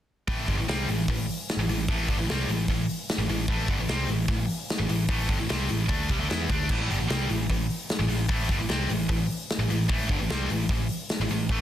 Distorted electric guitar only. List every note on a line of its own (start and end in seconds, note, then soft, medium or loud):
0.28 0.47 A2 loud
0.28 0.47 E3 loud
0.28 0.48 A3 loud
0.48 0.57 G2 loud
0.48 0.57 D3 medium
0.58 0.68 A2 medium
0.58 0.68 E3 medium
0.68 0.87 C3 medium
0.68 0.88 G3 loud
0.68 0.87 C4 loud
0.90 1.05 A2 medium
0.90 1.05 E3 medium
1.10 1.25 A2 medium
1.10 1.25 E3 medium
1.59 1.68 A2 medium
1.59 1.69 E3 medium
1.69 1.84 A2 medium
1.69 1.85 E3 medium
1.90 2.08 A2 loud
1.90 2.08 E3 loud
1.90 2.08 A3 loud
2.10 2.18 G2 loud
2.10 2.18 D3 medium
2.19 2.28 A2 medium
2.19 2.29 E3 medium
2.30 2.48 C3 medium
2.30 2.49 G3 loud
2.30 2.49 C4 loud
2.50 2.65 A2 medium
2.50 2.65 E3 medium
2.70 2.85 A2 medium
2.70 2.85 E3 medium
3.19 3.28 A2 medium
3.19 3.29 E3 medium
3.30 3.45 A2 medium
3.30 3.45 E3 medium
3.49 3.68 A2 medium
3.49 3.68 E3 loud
3.49 3.68 A3 loud
3.69 3.78 G2 medium
3.69 3.78 D3 loud
3.80 3.89 A2 medium
3.80 3.89 E3 medium
3.89 4.08 C3 medium
3.89 4.08 G3 loud
3.89 4.08 C4 loud
4.09 4.25 A2 medium
4.09 4.25 E3 medium
4.28 4.44 A2 medium
4.28 4.45 E3 medium
4.79 4.88 A2 medium
4.79 4.88 E3 medium
4.89 5.05 A2 medium
4.89 5.05 E3 medium
5.09 5.28 A2 medium
5.09 5.28 E3 loud
5.09 5.29 A3 loud
5.28 5.38 G2 medium
5.28 5.38 D3 loud
5.39 5.49 A2 medium
5.39 5.49 E3 medium
5.49 5.68 C3 loud
5.49 5.68 G3 loud
5.49 5.69 C4 loud
5.69 5.85 A2 medium
5.69 5.85 E3 medium
5.89 6.08 D3 medium
5.89 6.08 A3 loud
5.89 6.08 D4 loud
6.10 6.19 C3 medium
6.10 6.19 G3 loud
6.20 6.29 D3 medium
6.20 6.29 A3 medium
6.29 6.49 E3 medium
6.29 6.49 B3 loud
6.29 6.49 E4 medium
6.50 6.69 D3 medium
6.50 6.69 A3 medium
6.50 6.69 D4 loud
6.70 6.89 A2 medium
6.70 6.89 E3 medium
6.70 6.89 A3 loud
6.90 6.99 G2 medium
6.90 6.99 D3 loud
6.99 7.08 A2 medium
6.99 7.08 E3 medium
7.09 7.28 C3 medium
7.09 7.28 G3 medium
7.09 7.29 C4 loud
7.30 7.45 A2 medium
7.30 7.46 E3 medium
7.50 7.66 A2 medium
7.50 7.66 E3 medium
7.99 8.07 A2 medium
7.99 8.08 E3 medium
8.08 8.25 A2 medium
8.08 8.25 E3 medium
8.29 8.48 A2 loud
8.29 8.49 E3 loud
8.29 8.49 A3 loud
8.49 8.59 G2 loud
8.49 8.58 D3 loud
8.59 8.69 A2 medium
8.59 8.69 E3 medium
8.69 8.88 C3 medium
8.69 8.89 G3 loud
8.69 8.89 C4 loud
8.90 9.06 A2 medium
8.90 9.06 E3 medium
9.09 9.25 A2 medium
9.09 9.25 E3 medium
9.59 9.69 A2 medium
9.59 9.69 E3 medium
9.70 9.86 A2 medium
9.70 9.86 E3 medium
9.89 10.08 A2 loud
9.89 10.09 E3 loud
9.89 10.09 A3 loud
10.10 10.19 G2 loud
10.10 10.19 D3 loud
10.20 10.30 A2 medium
10.20 10.30 E3 medium
10.31 10.49 C3 loud
10.31 10.50 G3 loud
10.31 10.50 C4 loud
10.51 10.66 A2 medium
10.51 10.67 E3 medium
10.71 10.86 A2 medium
10.71 10.86 E3 medium
11.21 11.29 A2 medium
11.21 11.30 E3 medium
11.31 11.46 A2 medium
11.31 11.46 E3 medium
11.50 11.61 A2 loud
11.50 11.61 E3 loud
11.50 11.61 A3 loud